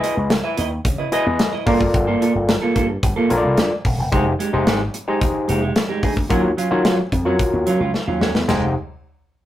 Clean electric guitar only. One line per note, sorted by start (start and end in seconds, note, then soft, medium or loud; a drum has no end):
0.03 0.13 E4 medium
0.03 0.14 B4 medium
0.03 0.14 D#5 medium
0.16 muted clean electric guitar stroke soft
0.30 muted clean electric guitar stroke soft
0.44 0.56 E4 medium
0.44 0.57 B4 medium
0.44 0.57 E5 medium
0.57 0.68 E4 medium
0.57 0.68 B4 medium
0.57 0.68 D#5 medium
0.71 muted clean electric guitar stroke soft
0.85 muted clean electric guitar stroke soft
0.98 1.09 E4 medium
0.98 1.09 B4 medium
0.98 1.09 D#5 medium
1.12 1.25 E4 medium
1.12 1.26 B4 medium
1.12 1.25 D#5 loud
1.26 muted clean electric guitar stroke medium
1.39 muted clean electric guitar stroke soft
1.53 1.64 E4 medium
1.53 1.64 B4 medium
1.53 1.63 D#5 medium
1.66 1.80 A#3 medium
1.66 1.80 F4 medium
1.66 1.80 A#4 medium
1.80 muted clean electric guitar stroke soft
1.94 muted clean electric guitar stroke soft
2.07 2.20 A#3 medium
2.07 2.20 F4 medium
2.07 2.21 A4 medium
2.21 2.31 A#3 medium
2.21 2.32 F4 medium
2.21 2.32 A4 medium
2.35 muted clean electric guitar stroke soft
2.48 muted clean electric guitar stroke soft
2.62 2.74 A#3 medium
2.62 2.75 F4 medium
2.62 2.75 A4 medium
2.75 2.86 A#3 medium
2.75 2.86 F4 medium
2.75 2.87 A4 medium
2.89 muted clean electric guitar stroke soft
3.03 muted clean electric guitar stroke soft
3.16 3.29 A#3 medium
3.16 3.29 F4 medium
3.16 3.30 A4 medium
3.30 muted clean electric guitar stroke soft
3.43 muted clean electric guitar stroke soft
3.57 muted clean electric guitar stroke soft
3.71 muted clean electric guitar stroke medium
3.98 muted clean electric guitar stroke soft
4.12 4.25 G#3 medium
4.12 4.26 D#4 medium
4.12 4.25 G4 loud
4.26 muted clean electric guitar stroke soft
4.39 4.50 G#3 medium
4.39 4.50 D#4 medium
4.39 4.50 G4 medium
4.53 4.64 G#3 medium
4.53 4.64 D#4 medium
4.53 4.63 G4 medium
4.67 4.80 G#3 loud
4.67 4.80 D#4 loud
4.67 4.79 G4 loud
4.81 muted clean electric guitar stroke soft
4.94 muted clean electric guitar stroke soft
5.08 5.19 G#3 medium
5.08 5.18 D#4 medium
5.08 5.18 G4 medium
5.21 muted clean electric guitar stroke soft
5.35 muted clean electric guitar stroke soft
5.48 5.61 G#3 medium
5.48 5.61 D#4 medium
5.48 5.60 G4 medium
5.62 5.73 G#3 medium
5.62 5.73 D#4 medium
5.62 5.72 G4 medium
5.76 muted clean electric guitar stroke soft
5.89 6.01 G#3 medium
5.89 6.02 D#4 medium
5.89 6.02 G4 medium
6.03 6.13 G#3 medium
6.03 6.14 D#4 medium
6.03 6.14 G#4 medium
6.16 muted clean electric guitar stroke soft
6.30 6.43 F#3 medium
6.30 6.43 C#4 medium
6.30 6.43 F#4 loud
6.44 muted clean electric guitar stroke soft
6.57 6.68 F#3 medium
6.57 6.68 C#4 medium
6.57 6.68 F4 medium
6.71 6.82 F#3 medium
6.71 6.82 C#4 medium
6.71 6.81 F#4 medium
6.84 6.98 F#3 loud
6.84 6.98 C#4 medium
6.84 6.97 F4 loud
6.98 muted clean electric guitar stroke soft
7.12 muted clean electric guitar stroke soft
7.25 7.37 F#3 medium
7.25 7.36 C#4 medium
7.25 7.36 F#4 medium
7.39 muted clean electric guitar stroke soft
7.53 muted clean electric guitar stroke soft
7.67 7.80 F#3 medium
7.67 7.80 C#4 loud
7.67 7.79 F4 loud
7.80 7.91 F#3 medium
7.80 7.91 C#4 medium
7.80 7.91 F4 medium
7.94 muted clean electric guitar stroke soft
8.07 8.20 F#3 medium
8.07 8.20 C#4 medium
8.07 8.21 F4 medium
8.21 8.31 F#3 medium
8.21 8.32 C#4 medium
8.21 8.32 F#4 medium
8.35 muted clean electric guitar stroke soft
8.48 8.65 G#3 medium
8.48 8.65 D#4 medium
8.48 8.65 G4 medium